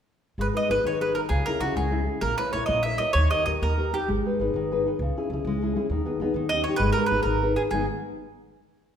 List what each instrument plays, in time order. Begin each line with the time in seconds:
0.38 upright bass G#1, nylon-string guitar G#3, mandolin B4
0.53 nylon-string guitar D#4 G#4 B4, mandolin D#5
0.70 upright bass G#1, nylon-string guitar D#4 G#4 B4, mandolin B4
0.84 upright bass G#1, nylon-string guitar D#3, mandolin C#5
1.01 nylon-string guitar D#4 G#4 B4, mandolin B4
1.15 nylon-string guitar D#4 G#4 B4, mandolin A#4
1.29 upright bass C#2, nylon-string guitar C#3, mandolin G#4
1.46 nylon-string guitar C#4 E4 G#4, mandolin A#4
1.60 upright bass C#2, nylon-string guitar C#4 E4 G#4, mandolin F#4
1.75 upright bass C#2, nylon-string guitar G#3, mandolin G#4
1.91 nylon-string guitar C#4 E4 G#4
2.05 nylon-string guitar C#4 E4 G#4
2.21 upright bass A#1, nylon-string guitar A#3, mandolin A#4
2.38 nylon-string guitar E4 A#4 C#5, mandolin B4
2.53 upright bass A#1, nylon-string guitar E4 A#4 C#5, mandolin C#5
2.66 upright bass A#1, nylon-string guitar A#3, mandolin D#5
2.83 nylon-string guitar E4 A#4 C#5, mandolin E5
2.98 nylon-string guitar E4 A#4 C#5, mandolin D#5
3.13 upright bass D#2, nylon-string guitar D#3, mandolin C#5
3.30 nylon-string guitar D#4 G4 A#4, mandolin D#5
3.46 upright bass D#2, nylon-string guitar D#4 G4 A#4, mandolin D#5
3.62 upright bass D#2, nylon-string guitar A#3, mandolin A#4
3.77 nylon-string guitar D#4 G4 A#4
3.93 nylon-string guitar D#4 G4, mandolin G4
4.08 upright bass G#1, nylon-string guitar G#3
4.25 nylon-string guitar D#4 G#4 B4
4.40 upright bass G#1, nylon-string guitar D#4 G#4 B4
4.54 upright bass G#1, nylon-string guitar D#3
4.71 nylon-string guitar D#4 G#4 B4
4.86 nylon-string guitar D#4 G#4 B4
4.99 upright bass C#2, nylon-string guitar C#3
5.17 nylon-string guitar C#4 E4 G#4
5.30 upright bass C#2, nylon-string guitar C#4 E4 G#4
5.45 upright bass C#2, nylon-string guitar G#3
5.62 nylon-string guitar C#4 E4 G#4
5.76 nylon-string guitar C#4 E4 G#4
5.90 upright bass D#2, nylon-string guitar D#3
6.05 nylon-string guitar B3 D#4 G#4
6.20 upright bass D#2, nylon-string guitar B3 D#4 G#4
6.34 upright bass D#2, nylon-string guitar D#3
6.49 nylon-string guitar C#4 D#4, mandolin D#5
6.53 nylon-string guitar G4
6.64 mandolin C#5
6.68 nylon-string guitar C#4 D#4 G4
6.76 upright bass G#1, mandolin B4
6.81 nylon-string guitar G#3
6.93 mandolin A#4
6.97 nylon-string guitar D#4 G#4 B4
7.06 mandolin B4
7.11 upright bass G#1, nylon-string guitar D#4 G#4 B4
7.23 upright bass G#1, nylon-string guitar D#3, mandolin A#4
7.42 nylon-string guitar D#4 G#4 B4
7.56 nylon-string guitar D#4 G#4 B4, mandolin G#4
7.71 upright bass G#1, nylon-string guitar G#2 D#3 G#3 B3 D#4, mandolin G#4